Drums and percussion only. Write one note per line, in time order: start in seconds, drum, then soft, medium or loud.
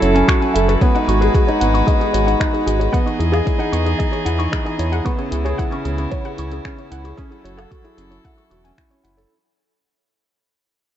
0.02 closed hi-hat medium
0.16 closed hi-hat soft
0.28 finger snap medium
0.28 kick loud
0.28 closed hi-hat soft
0.42 closed hi-hat soft
0.56 closed hi-hat medium
0.69 closed hi-hat soft
0.81 kick loud
0.81 closed hi-hat soft
0.96 closed hi-hat soft
1.09 closed hi-hat medium
1.22 closed hi-hat soft
1.34 kick loud
1.34 closed hi-hat soft
1.48 closed hi-hat soft
1.61 closed hi-hat medium
1.75 closed hi-hat soft
1.88 kick loud
1.88 closed hi-hat soft
2.01 closed hi-hat soft
2.14 closed hi-hat medium
2.28 closed hi-hat soft
2.41 finger snap medium
2.41 kick loud
2.41 closed hi-hat soft
2.55 closed hi-hat soft
2.68 closed hi-hat medium
2.81 closed hi-hat soft
2.94 kick loud
2.94 closed hi-hat soft
3.07 closed hi-hat soft
3.20 closed hi-hat medium
3.34 closed hi-hat soft
3.34 low woodblock medium
3.47 kick loud
3.47 closed hi-hat soft
3.60 closed hi-hat soft
3.73 closed hi-hat medium
3.86 closed hi-hat soft
4.00 kick loud
4.00 closed hi-hat soft
4.13 closed hi-hat soft
4.26 closed hi-hat medium
4.40 closed hi-hat soft
4.53 finger snap medium
4.53 kick loud
4.53 closed hi-hat soft
4.66 closed hi-hat soft
4.79 closed hi-hat medium
4.93 closed hi-hat soft
5.06 kick loud
5.06 closed hi-hat soft
5.19 closed hi-hat soft
5.32 closed hi-hat medium
5.46 closed hi-hat soft
5.59 kick loud
5.59 closed hi-hat soft
5.72 closed hi-hat soft
5.85 closed hi-hat medium
5.98 closed hi-hat soft
6.12 kick loud
6.12 closed hi-hat soft
6.25 closed hi-hat soft
6.38 closed hi-hat medium
6.52 closed hi-hat soft
6.65 finger snap medium
6.65 kick loud
6.65 closed hi-hat soft
6.79 closed hi-hat soft
6.92 closed hi-hat medium
7.05 closed hi-hat soft
7.18 kick loud
7.18 closed hi-hat soft
7.32 closed hi-hat soft
7.45 closed hi-hat medium
7.59 closed hi-hat soft
7.59 low woodblock medium
7.71 kick loud
7.71 closed hi-hat soft
7.85 closed hi-hat soft
7.98 closed hi-hat medium
8.12 closed hi-hat soft
8.25 kick loud
8.25 closed hi-hat soft
8.38 closed hi-hat soft
8.51 closed hi-hat medium
8.65 closed hi-hat soft
8.78 finger snap medium
8.78 kick loud
8.78 closed hi-hat soft
8.91 closed hi-hat soft
9.05 closed hi-hat medium
9.18 closed hi-hat soft